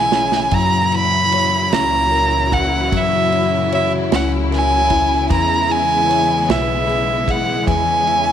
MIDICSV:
0, 0, Header, 1, 6, 480
1, 0, Start_track
1, 0, Tempo, 794702
1, 316, Time_signature, 6, 3, 24, 8
1, 5026, End_track
2, 0, Start_track
2, 0, Title_t, "Violin"
2, 0, Program_c, 0, 40
2, 0, Note_on_c, 0, 80, 93
2, 325, Note_on_c, 0, 82, 108
2, 334, Note_off_c, 0, 80, 0
2, 568, Note_on_c, 0, 83, 125
2, 577, Note_off_c, 0, 82, 0
2, 1043, Note_on_c, 0, 82, 113
2, 1052, Note_off_c, 0, 83, 0
2, 1530, Note_on_c, 0, 78, 95
2, 1539, Note_off_c, 0, 82, 0
2, 1790, Note_on_c, 0, 76, 98
2, 1799, Note_off_c, 0, 78, 0
2, 2257, Note_off_c, 0, 76, 0
2, 2260, Note_on_c, 0, 76, 85
2, 2365, Note_off_c, 0, 76, 0
2, 2500, Note_on_c, 0, 78, 87
2, 2605, Note_off_c, 0, 78, 0
2, 2741, Note_on_c, 0, 80, 107
2, 3187, Note_off_c, 0, 80, 0
2, 3210, Note_on_c, 0, 82, 103
2, 3450, Note_on_c, 0, 80, 110
2, 3459, Note_off_c, 0, 82, 0
2, 3931, Note_on_c, 0, 76, 94
2, 3940, Note_off_c, 0, 80, 0
2, 4409, Note_on_c, 0, 78, 88
2, 4418, Note_off_c, 0, 76, 0
2, 4639, Note_off_c, 0, 78, 0
2, 4642, Note_on_c, 0, 80, 96
2, 5026, Note_off_c, 0, 80, 0
2, 5026, End_track
3, 0, Start_track
3, 0, Title_t, "Nylon-string guitar"
3, 0, Program_c, 1, 24
3, 0, Note_on_c, 1, 52, 88
3, 0, Note_on_c, 1, 56, 61
3, 0, Note_on_c, 1, 61, 56
3, 0, Note_on_c, 1, 68, 54
3, 0, Note_on_c, 1, 71, 64
3, 76, Note_off_c, 1, 61, 0
3, 79, Note_on_c, 1, 61, 57
3, 309, Note_off_c, 1, 52, 0
3, 312, Note_on_c, 1, 54, 77
3, 361, Note_off_c, 1, 68, 0
3, 362, Note_off_c, 1, 56, 0
3, 367, Note_off_c, 1, 71, 0
3, 558, Note_off_c, 1, 61, 0
3, 561, Note_on_c, 1, 64, 59
3, 807, Note_on_c, 1, 73, 71
3, 1045, Note_on_c, 1, 61, 66
3, 1279, Note_on_c, 1, 70, 60
3, 1522, Note_off_c, 1, 64, 0
3, 1524, Note_on_c, 1, 64, 58
3, 1762, Note_off_c, 1, 54, 0
3, 1769, Note_on_c, 1, 54, 88
3, 2012, Note_off_c, 1, 64, 0
3, 2015, Note_on_c, 1, 64, 58
3, 2250, Note_off_c, 1, 73, 0
3, 2253, Note_on_c, 1, 73, 68
3, 2485, Note_off_c, 1, 61, 0
3, 2488, Note_on_c, 1, 61, 67
3, 2720, Note_off_c, 1, 70, 0
3, 2727, Note_on_c, 1, 70, 64
3, 2960, Note_off_c, 1, 64, 0
3, 2962, Note_on_c, 1, 64, 64
3, 3200, Note_on_c, 1, 52, 86
3, 3205, Note_off_c, 1, 54, 0
3, 3252, Note_off_c, 1, 70, 0
3, 3441, Note_off_c, 1, 64, 0
3, 3443, Note_on_c, 1, 64, 62
3, 3680, Note_off_c, 1, 73, 0
3, 3682, Note_on_c, 1, 73, 73
3, 3909, Note_off_c, 1, 61, 0
3, 3912, Note_on_c, 1, 59, 67
3, 4153, Note_on_c, 1, 68, 58
3, 4385, Note_off_c, 1, 64, 0
3, 4392, Note_on_c, 1, 64, 63
3, 4628, Note_off_c, 1, 52, 0
3, 4635, Note_on_c, 1, 52, 84
3, 4869, Note_off_c, 1, 64, 0
3, 4876, Note_on_c, 1, 64, 60
3, 5026, Note_off_c, 1, 52, 0
3, 5026, Note_off_c, 1, 59, 0
3, 5026, Note_off_c, 1, 64, 0
3, 5026, Note_off_c, 1, 68, 0
3, 5026, Note_off_c, 1, 73, 0
3, 5026, End_track
4, 0, Start_track
4, 0, Title_t, "String section"
4, 0, Program_c, 2, 48
4, 0, Note_on_c, 2, 46, 68
4, 0, Note_on_c, 2, 49, 75
4, 0, Note_on_c, 2, 52, 76
4, 0, Note_on_c, 2, 56, 68
4, 0, Note_on_c, 2, 64, 92
4, 288, Note_off_c, 2, 64, 0
4, 290, Note_off_c, 2, 52, 0
4, 290, Note_off_c, 2, 56, 0
4, 291, Note_off_c, 2, 49, 0
4, 313, Note_on_c, 2, 52, 66
4, 314, Note_on_c, 2, 54, 69
4, 315, Note_on_c, 2, 49, 71
4, 317, Note_on_c, 2, 64, 79
4, 3178, Note_off_c, 2, 52, 0
4, 3178, Note_off_c, 2, 54, 0
4, 3184, Note_off_c, 2, 46, 0
4, 3206, Note_on_c, 2, 52, 75
4, 3213, Note_on_c, 2, 59, 70
4, 3215, Note_on_c, 2, 56, 68
4, 4626, Note_off_c, 2, 59, 0
4, 4635, Note_on_c, 2, 61, 68
4, 5026, Note_off_c, 2, 49, 0
4, 5026, Note_off_c, 2, 52, 0
4, 5026, Note_off_c, 2, 56, 0
4, 5026, Note_off_c, 2, 61, 0
4, 5026, Note_off_c, 2, 64, 0
4, 5026, End_track
5, 0, Start_track
5, 0, Title_t, "Upright bass"
5, 0, Program_c, 3, 32
5, 0, Note_on_c, 3, 35, 90
5, 291, Note_off_c, 3, 35, 0
5, 310, Note_on_c, 3, 42, 102
5, 1015, Note_off_c, 3, 42, 0
5, 1038, Note_on_c, 3, 37, 82
5, 1741, Note_off_c, 3, 37, 0
5, 1763, Note_on_c, 3, 42, 93
5, 2462, Note_off_c, 3, 42, 0
5, 2489, Note_on_c, 3, 37, 88
5, 3180, Note_off_c, 3, 37, 0
5, 3202, Note_on_c, 3, 40, 104
5, 3894, Note_off_c, 3, 40, 0
5, 3915, Note_on_c, 3, 35, 102
5, 4609, Note_off_c, 3, 35, 0
5, 4634, Note_on_c, 3, 40, 102
5, 5026, Note_off_c, 3, 40, 0
5, 5026, End_track
6, 0, Start_track
6, 0, Title_t, "Drums"
6, 73, Note_on_c, 9, 38, 90
6, 133, Note_off_c, 9, 38, 0
6, 193, Note_on_c, 9, 38, 91
6, 254, Note_off_c, 9, 38, 0
6, 310, Note_on_c, 9, 51, 81
6, 313, Note_on_c, 9, 36, 100
6, 370, Note_off_c, 9, 51, 0
6, 374, Note_off_c, 9, 36, 0
6, 555, Note_on_c, 9, 51, 44
6, 616, Note_off_c, 9, 51, 0
6, 799, Note_on_c, 9, 51, 60
6, 859, Note_off_c, 9, 51, 0
6, 1042, Note_on_c, 9, 51, 79
6, 1044, Note_on_c, 9, 38, 105
6, 1102, Note_off_c, 9, 51, 0
6, 1105, Note_off_c, 9, 38, 0
6, 1288, Note_on_c, 9, 51, 39
6, 1348, Note_off_c, 9, 51, 0
6, 1523, Note_on_c, 9, 36, 96
6, 1525, Note_on_c, 9, 51, 57
6, 1584, Note_off_c, 9, 36, 0
6, 1586, Note_off_c, 9, 51, 0
6, 1765, Note_on_c, 9, 36, 99
6, 1766, Note_on_c, 9, 51, 76
6, 1826, Note_off_c, 9, 36, 0
6, 1826, Note_off_c, 9, 51, 0
6, 2007, Note_on_c, 9, 51, 44
6, 2068, Note_off_c, 9, 51, 0
6, 2249, Note_on_c, 9, 51, 59
6, 2309, Note_off_c, 9, 51, 0
6, 2488, Note_on_c, 9, 51, 75
6, 2490, Note_on_c, 9, 38, 108
6, 2548, Note_off_c, 9, 51, 0
6, 2551, Note_off_c, 9, 38, 0
6, 2731, Note_on_c, 9, 51, 41
6, 2735, Note_on_c, 9, 38, 37
6, 2791, Note_off_c, 9, 51, 0
6, 2795, Note_off_c, 9, 38, 0
6, 2960, Note_on_c, 9, 51, 61
6, 2962, Note_on_c, 9, 36, 94
6, 3020, Note_off_c, 9, 51, 0
6, 3023, Note_off_c, 9, 36, 0
6, 3203, Note_on_c, 9, 36, 97
6, 3204, Note_on_c, 9, 51, 82
6, 3264, Note_off_c, 9, 36, 0
6, 3264, Note_off_c, 9, 51, 0
6, 3442, Note_on_c, 9, 51, 41
6, 3502, Note_off_c, 9, 51, 0
6, 3688, Note_on_c, 9, 51, 58
6, 3748, Note_off_c, 9, 51, 0
6, 3924, Note_on_c, 9, 51, 70
6, 3926, Note_on_c, 9, 38, 109
6, 3984, Note_off_c, 9, 51, 0
6, 3987, Note_off_c, 9, 38, 0
6, 4164, Note_on_c, 9, 51, 42
6, 4224, Note_off_c, 9, 51, 0
6, 4396, Note_on_c, 9, 36, 96
6, 4399, Note_on_c, 9, 51, 57
6, 4456, Note_off_c, 9, 36, 0
6, 4460, Note_off_c, 9, 51, 0
6, 4635, Note_on_c, 9, 36, 101
6, 4636, Note_on_c, 9, 51, 76
6, 4695, Note_off_c, 9, 36, 0
6, 4697, Note_off_c, 9, 51, 0
6, 4875, Note_on_c, 9, 51, 38
6, 4935, Note_off_c, 9, 51, 0
6, 5026, End_track
0, 0, End_of_file